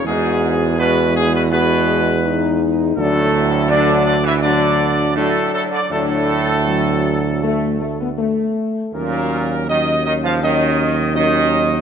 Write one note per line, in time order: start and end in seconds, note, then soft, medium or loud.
0.04 2.93 E2 loud
0.04 0.74 G#2 loud
0.04 0.77 G#3 loud
0.04 0.77 F#4 loud
0.04 0.74 G#4 loud
0.78 1.12 B2 loud
0.78 1.48 G#3 loud
0.78 1.48 F#4 loud
0.78 1.12 B4 loud
1.15 1.33 G#2 loud
1.15 1.32 G#4 loud
1.33 1.50 B2 loud
1.33 1.43 B4 loud
1.51 2.57 B2 loud
1.51 2.94 G#3 loud
1.51 2.21 F#4 loud
1.51 2.57 B4 loud
2.26 2.94 D#4 loud
2.97 5.58 D2 loud
2.97 3.66 A2 loud
2.97 3.66 F#3 loud
2.97 3.69 D4 loud
2.97 3.66 A4 loud
3.69 4.03 D3 loud
3.69 4.27 F#3 loud
3.69 4.27 D4 loud
3.69 4.05 D5 loud
4.06 4.15 D3 loud
4.06 4.23 D5 loud
4.24 4.41 E3 loud
4.24 4.33 E5 loud
4.42 5.12 D3 loud
4.42 5.13 F#3 loud
4.42 5.13 D4 loud
4.42 5.12 D5 loud
5.15 5.50 A2 loud
5.15 5.87 F#3 loud
5.15 5.87 D4 loud
5.15 5.52 A4 loud
5.52 5.70 A2 loud
5.52 5.62 A4 loud
5.70 5.79 D3 loud
5.70 5.90 D5 loud
5.90 8.57 D2 loud
5.90 8.13 A2 loud
5.90 6.55 F#3 loud
5.90 6.55 D4 loud
5.90 8.14 A4 loud
6.67 7.39 F#3 loud
7.43 7.78 A3 loud
7.80 7.98 A3 medium
8.01 8.09 B3 loud
8.17 8.90 A3 loud
8.93 11.81 D#2 loud
8.93 9.64 A#2 loud
8.93 9.66 F#3 loud
8.93 9.65 C#4 loud
8.93 9.65 A#4 loud
9.68 10.03 D#3 loud
9.68 10.38 F#3 loud
9.68 10.37 C#4 medium
9.68 10.03 D#5 loud
10.05 10.14 D#3 loud
10.05 10.14 D#5 loud
10.23 10.41 F3 loud
10.23 10.33 F5 loud
10.42 11.12 D#3 loud
10.42 11.11 F#3 loud
10.42 11.11 C#4 loud
10.42 11.12 D#5 loud
11.14 11.81 D#3 loud
11.14 11.81 F#3 loud
11.14 11.81 C#4 loud
11.14 11.81 D#5 loud